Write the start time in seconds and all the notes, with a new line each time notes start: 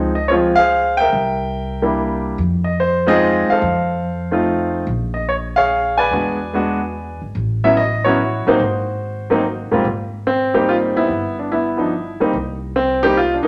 Already playing: C#2 F3 G#3 C4 D#4
0.15 D#5
0.28 F3 G#3 C4 F4 C#5
0.55 G#4 C5 F5
0.97 A#4 E5 G5
1.13 C2
1.82 G3 A#3 D4 E4
2.38 F2
2.64 D#5
2.80 C5
3.06 G#3 C4 D#4 F4 G#4 C5 D#5
3.49 A4 C5 F5, muted upright bass stroke
3.62 F2
4.31 A3 C4 D#4 F4
4.87 A#1
5.14 D#5
5.29 C#5
5.56 G#4 C#5 F5
5.98 B4 D5 G#5
6.11 E2 G#3 B3 D4 F#4
6.53 G#3 B3 D4 F#4
7.22 G#1
7.35 A1
7.64 F#3 B3 C#4 E4 E5
7.77 D#5
8.04 F#3 B3 C#4 E4 F#4 C#5
8.47 A1 F#3 A#3 C4 D#4 F#4 C5
8.60 G#1
9.30 F#3 A#3 C4 D#4
9.71 G#2 G3 A#3 C4 F4, muted upright bass stroke
9.85 G#1
10.27 C4
10.54 G3 A#3 C4 D#4 G4
10.69 F4
10.96 B3 E4
11.09 G1
11.39 D4
11.52 B3 E4
11.77 F3 B3 D4 D#4
12.20 G3 A#3 C4 D#4
12.33 C2
12.76 C4
13.03 G3 A#3 C4 D#4 G4
13.17 F4
13.34 D4
13.43 A#3 D#4